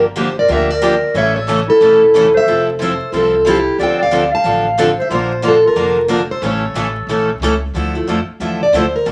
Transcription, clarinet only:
0.18 0.36 G4 medium
0.39 0.50 A#4 medium
0.52 0.73 A#4 medium
0.73 1.16 A#4 medium
1.17 1.35 C#5 medium
1.36 1.66 A4 medium
1.68 2.30 E4 medium
2.34 2.65 C5 medium
2.81 3.11 A4 medium
3.13 3.43 F4 medium
3.47 3.77 E4 medium
3.79 3.97 D5 medium
3.99 4.29 D5 medium
4.32 4.93 F5 medium
4.99 5.09 C5 medium
5.10 5.41 F4 medium
5.44 5.62 F4 medium
5.66 6.07 F4 medium
6.31 6.42 A4 medium
6.44 7.57 A4 medium

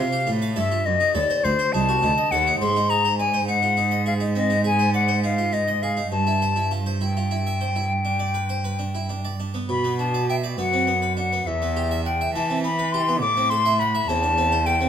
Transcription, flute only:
0.00 0.30 F5 loud
0.57 0.87 E5 medium
0.86 1.16 D#5 loud
1.15 1.46 D5 loud
1.44 1.74 C5 loud
1.73 2.33 A5 loud
2.31 2.60 F#5 loud
2.60 2.91 C6 loud
2.90 3.18 A#5 loud
3.19 3.47 G#5 loud
3.48 4.05 F#5 loud
4.07 4.14 F5 medium
4.36 4.65 D#5 medium
4.66 4.94 G#5 loud
4.94 5.23 F#5 medium
5.24 5.55 F5 medium
5.53 5.84 D#5 medium
5.82 6.11 F5 medium
6.11 6.71 A5 medium
7.01 9.36 G5 medium
9.70 9.97 B5 medium
9.99 10.28 A5 medium
10.29 10.36 G5 medium
10.59 11.16 F#5 medium
11.18 11.48 F#5 medium
11.47 12.05 E5 medium
12.05 12.34 G5 medium
12.35 12.63 A5 medium
12.63 12.94 B5 loud
12.92 13.20 C6 loud
13.21 13.51 D6 loud
13.50 13.81 C6 loud
13.79 14.10 B5 loud
14.08 14.68 A5 loud
14.66 14.89 G5 loud

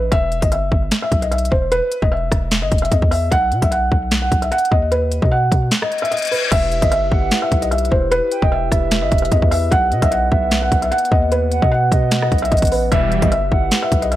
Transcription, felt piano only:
0.00 0.10 B4 medium
0.12 0.40 E5 loud
0.42 0.51 D#5 medium
0.52 0.99 E5 medium
1.02 1.21 E5 medium
1.22 1.31 D#5 medium
1.31 1.50 E5 medium
1.52 1.70 C5 medium
1.72 2.00 B4 loud
2.02 2.11 D#5 medium
2.12 2.59 E5 medium
2.62 2.81 D#5 medium
2.82 2.91 E5 medium
2.91 3.10 D#5 medium
3.11 3.30 E5 medium
3.31 3.60 F#5 loud
3.62 3.71 E5 medium
3.71 4.19 F#5 medium
4.22 4.41 F#5 medium
4.42 4.51 E5 medium
4.52 4.70 F#5 loud
4.71 4.90 D#5 medium
4.92 5.20 B4 loud
5.22 5.31 D#5 medium
5.31 5.79 F#5 medium
5.82 6.01 D#5 medium
6.02 6.11 E5 medium
6.11 6.30 D#5 medium
6.32 6.50 B4 medium
6.51 6.80 E5 loud
6.82 6.91 D#5 medium
6.92 7.39 E5 medium
7.42 7.61 E5 medium
7.62 7.71 D#5 medium
7.71 7.90 E5 medium
7.92 8.10 C5 medium
8.11 8.40 B4 loud
8.42 8.51 D#5 medium
8.52 8.99 E5 medium
9.02 9.21 D#5 medium
9.22 9.31 E5 medium
9.31 9.50 D#5 medium
9.51 9.70 E5 medium
9.71 10.00 F#5 loud
10.02 10.11 E5 medium
10.12 10.59 F#5 medium
10.62 10.81 F#5 medium
10.82 10.91 E5 medium
10.91 11.10 F#5 loud
11.11 11.30 D#5 medium
11.32 11.60 B4 medium
11.62 11.71 D#5 medium
11.71 12.19 F#5 medium
12.22 12.41 D#5 medium
12.42 12.51 E5 medium
12.51 12.70 D#5 medium
12.72 12.90 B4 medium
12.92 13.20 E5 loud
13.22 13.31 D#5 medium
13.32 13.79 E5 medium
13.82 14.01 E5 medium
14.02 14.11 D#5 medium
14.12 14.16 E5 medium

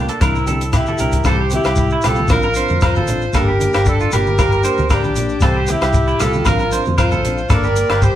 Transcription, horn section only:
0.00 0.21 A#3 medium
0.00 0.22 D4 medium
0.23 0.96 C4 medium
0.23 0.73 E4 medium
0.75 1.23 E4 soft
0.75 1.23 G4 medium
1.26 1.50 G4 medium
1.26 1.51 C5 medium
1.53 2.01 E4 medium
1.53 2.01 G4 medium
2.05 2.30 F4 medium
2.05 2.31 A4 medium
2.32 2.79 F4 medium
2.32 2.80 A#4 loud
2.84 3.32 F4 medium
2.84 3.32 C5 medium
3.36 3.87 G4 medium
3.36 3.87 A#4 loud
3.88 4.13 D4 medium
3.88 4.13 A4 medium
4.14 4.87 G4 medium
4.14 4.87 A#4 loud
4.92 5.40 D4 medium
4.92 5.40 G4 medium
5.43 5.68 G4 medium
5.43 5.69 C5 medium
5.69 6.21 E4 medium
5.69 6.21 G4 medium
6.21 6.46 F4 medium
6.21 6.47 A4 medium
6.47 6.84 F4 medium
6.47 6.84 A#4 loud
6.98 7.47 F4 medium
6.98 7.47 C5 medium
7.50 8.03 A#4 medium
7.50 8.02 D5 loud
8.02 8.15 G4 medium
8.02 8.15 C5 loud

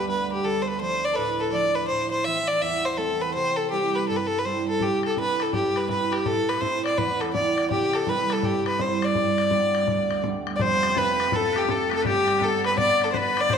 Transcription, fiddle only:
0.09 0.30 B4 medium
0.32 0.46 G4 medium
0.45 0.63 A4 medium
0.62 0.69 C5 medium
0.68 0.80 B4 medium
0.81 1.06 C5 medium
1.05 1.14 D5 medium
1.13 1.17 A4 medium
1.13 1.41 B4 medium
1.39 1.52 A4 medium
1.53 1.77 D5 medium
1.75 1.87 B4 medium
1.88 2.10 C5 medium
2.11 2.26 C5 medium
2.24 2.49 E5 loud
2.48 2.63 D5 medium
2.61 2.86 E5 loud
2.85 2.99 C5 medium
2.97 3.23 A4 medium
3.21 3.33 B4 medium
3.34 3.58 C5 loud
3.57 3.71 A4 medium
3.71 3.97 G4 medium
3.95 4.08 B4 medium
4.09 4.18 A4 medium
4.17 4.28 B4 medium
4.27 4.40 A4 medium
4.39 4.47 B4 medium
4.45 4.68 C5 medium
4.69 4.84 A4 medium
4.82 5.04 G4 medium
5.06 5.17 A4 medium
5.20 5.43 B4 medium
5.42 5.53 A4 medium
5.54 5.79 G4 medium
5.77 5.89 B4 medium
5.90 6.14 B4 medium
6.12 6.27 G4 medium
6.26 6.50 A4 medium
6.49 6.62 B4 medium
6.61 6.84 C5 medium
6.85 6.99 D5 medium
6.98 7.22 B4 medium
7.21 7.33 A4 medium
7.33 7.68 D5 medium
7.71 7.96 G4 medium
7.95 8.10 A4 medium
8.09 8.33 B4 medium
8.32 8.46 A4 medium
8.44 8.67 G4 medium
8.67 8.83 B4 medium
8.81 9.06 C5 medium
9.04 10.25 D5 medium
10.56 10.63 D5 medium
10.61 11.00 C5 loud
10.98 11.37 B4 loud
11.35 11.59 A4 medium
11.58 11.73 G4 medium
11.72 11.94 A4 medium
11.95 12.06 A4 medium
12.07 12.45 G4 loud
12.44 12.65 A4 loud
12.66 12.78 B4 medium
12.79 13.06 D5 loud
13.04 13.11 A4 medium
13.12 13.18 C5 medium
13.17 13.42 B4 medium
13.41 13.55 D5 loud
13.53 13.58 C5 loud

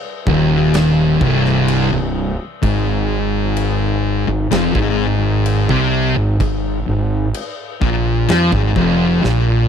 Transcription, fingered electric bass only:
0.27 1.17 D#1 loud
1.21 1.88 C1 loud
1.92 2.36 C1 medium
2.63 4.24 G#1 loud
4.28 4.49 G#1 medium
4.51 4.73 F1 loud
4.75 5.65 G#1 loud
5.69 6.13 C2 loud
6.17 6.38 G#1 medium
6.40 6.84 G#1 medium
6.88 7.31 G#1 medium
7.82 8.25 A#1 medium
8.30 8.51 F2 loud
8.52 8.74 G#1 loud
8.76 9.20 F1 loud
9.24 9.67 A#1 medium

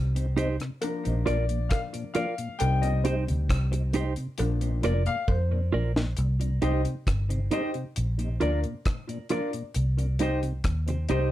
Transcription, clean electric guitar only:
0.37 0.55 D#4 loud
0.37 0.56 G4 loud
0.37 0.56 C5 loud
1.26 1.45 F4 medium
1.26 1.45 A#4 loud
1.26 1.46 D5 loud
2.15 2.34 F4 medium
2.15 2.34 A#4 medium
2.15 2.35 D5 medium
3.05 3.23 D#4 medium
3.05 3.23 G4 medium
3.05 3.24 C5 medium
3.72 muted clean electric guitar stroke soft
3.94 4.12 D#4 medium
3.94 4.13 G4 medium
3.94 4.13 C5 loud
4.84 5.02 F4 medium
4.84 5.02 A#4 loud
4.84 5.03 D5 medium
5.72 5.91 F4 medium
5.72 5.92 A#4 medium
5.72 5.92 D5 medium
6.62 6.80 D#4 medium
6.62 6.81 G4 medium
6.62 6.81 C5 medium
7.51 7.70 D#4 medium
7.51 7.70 G4 loud
7.51 7.71 C5 loud
8.40 8.59 F4 medium
8.40 8.59 A#4 medium
8.40 8.60 D5 medium
9.30 9.49 F4 medium
9.30 9.49 A#4 medium
9.30 9.49 D5 medium
10.21 10.38 D#4 medium
10.21 10.39 G4 medium
10.21 10.39 C5 loud
10.89 muted clean electric guitar stroke soft
11.10 11.27 D#4 medium
11.10 11.28 G4 medium
11.10 11.28 C5 medium

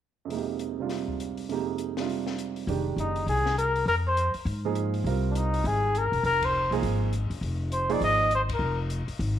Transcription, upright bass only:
2.67 2.95 F1 medium
2.96 3.25 F#1 medium
3.27 3.83 C2 medium
3.86 4.30 F2 medium
4.34 muted upright bass stroke soft
4.45 5.02 G#2 medium
5.04 5.61 C2 medium
5.64 6.09 G#1 medium
6.12 6.23 E1 medium
6.23 6.68 F1 medium
6.71 6.82 C2 medium
6.83 7.27 G#1 medium
7.30 7.41 F#1 medium
7.41 7.98 F1 medium
8.01 8.57 G#1 medium
8.59 9.04 F1 medium
9.08 muted upright bass stroke soft
9.19 9.39 G#1 medium

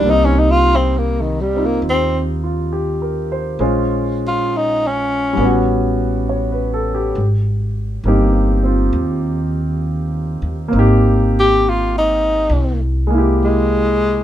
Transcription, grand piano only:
0.00 3.58 G3 soft
0.00 3.60 A#3 soft
0.07 1.53 C4 soft
0.07 1.55 D#4 soft
1.55 3.61 C4 soft
1.55 3.61 D#4 soft
1.55 2.42 F4 soft
2.44 2.89 F4 soft
2.73 3.29 G4 soft
3.02 3.48 A#4 soft
3.32 3.59 C5 soft
3.60 5.38 G#3 medium
3.60 5.38 C#4 soft
3.60 5.38 F4 medium
3.60 5.38 C5 soft
5.33 7.13 G3 soft
5.33 7.15 B3 soft
5.41 7.17 C#4 soft
5.41 7.19 F#4 medium
6.29 6.70 C#5 soft
6.52 6.89 B4 soft
6.74 7.00 A4 soft
6.95 7.25 G4 soft
8.05 10.67 A#3 soft
8.05 8.62 C4 soft
8.05 10.73 D#4 soft
8.05 10.73 G4 medium
8.63 10.70 C4 soft
8.63 10.72 F4 soft
10.68 12.48 A#3 medium
10.68 12.50 C4 soft
10.76 12.52 D#4 soft
10.76 12.54 G4 medium
13.07 14.24 G#3 medium
13.07 14.24 A#3 soft
13.14 14.24 E4 soft
13.14 14.24 G4 medium

